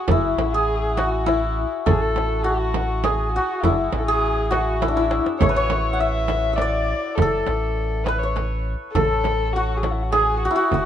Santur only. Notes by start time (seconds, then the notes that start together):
Already playing: F#4 G#4
0.11 E4
0.54 G#4
0.97 F#4
1.26 E4
1.86 A4
2.44 F#4
3.04 G#4
3.36 F#4
3.64 E4
4.08 G#4
4.51 F#4
4.82 E4
4.88 D4
4.97 E4
5.42 C#5
5.49 B4
5.56 C#5
5.93 F#5
6.00 E5
6.53 E5
6.61 D5
7.22 A4
8.08 B4
8.23 C#5
8.95 A4
9.56 F#4
10.12 G#4
10.45 F#4
10.51 E4
10.56 F#4
10.74 F#4